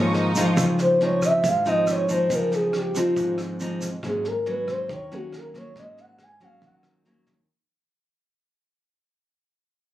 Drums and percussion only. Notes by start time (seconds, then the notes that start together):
0.14 snare
0.35 kick, snare, shaker
0.57 kick, cross-stick, snare, shaker
0.79 snare, shaker
1.01 snare
1.22 kick, cross-stick, snare, shaker
1.43 kick, snare, shaker
1.65 snare, shaker
1.87 cross-stick, snare, shaker
2.08 kick, snare, shaker
2.30 kick, snare, shaker
2.52 snare, shaker
2.73 cross-stick, snare
2.95 kick, snare, shaker
3.16 kick, snare, shaker
3.38 cross-stick, snare, shaker
3.60 snare, shaker
3.81 kick, snare, shaker
4.03 kick, cross-stick, snare
4.25 snare
4.46 snare
4.68 kick, cross-stick, snare
4.89 kick, snare
5.11 snare
5.33 cross-stick, snare
5.54 kick, snare
5.76 kick, snare
5.97 snare
6.19 cross-stick, snare
6.40 kick, snare
6.62 kick, snare
6.83 cross-stick, snare
7.05 snare
7.26 kick, snare